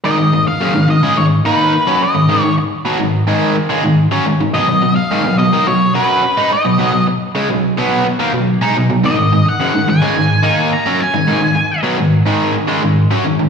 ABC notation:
X:1
M:4/4
L:1/16
Q:1/4=107
K:G#dor
V:1 name="Lead electric guitar"
d3 e3 d2 c2 B4 d2- | d2 z12 z2 | d3 e3 d2 c2 B4 d2- | d2 z12 z2 |
d3 f3 g6 a2 g2- | g4 z12 |]
V:2 name="Overdriven electric guitar" clef=bass
[G,,D,] [G,,D,] [G,,D,] z [F,,C,] [G,,D,] [G,,D,] [C,G,] [G,,D,]2 [D,A,D]2 z [F,C] z [G,,D,] | [G,,D,] [G,,D,] z2 [B,,F,] [G,,D,]2 [G,,D,G,]2 z [C,G,] [G,,D,]2 [F,C] [G,,D,] [G,,D,] | [B,,F,] [B,,F,] [B,,F,] z [G,,D,] [B,,F,] [B,,F,] [D,A,] [B,,F,]2 [F,CF]2 z [G,D] z [B,,F,] | [B,,F,] [B,,F,] z2 [C,G,] [B,,F,]2 [B,,F,B,]2 z [D,A,] [B,,F,]2 [G,D] [B,,F,] [B,,F,] |
[G,,D,] [G,,D,] [G,,D,] z [F,,C,] [G,,D,] [G,,D,] [C,G,] [G,,D,]2 [D,A,D]2 z [F,C] z [G,,D,] | [G,,D,] [G,,D,] z2 [B,,F,] [G,,D,]2 [G,,D,G,]2 z [C,G,] [G,,D,]2 [F,C] [G,,D,] [G,,D,] |]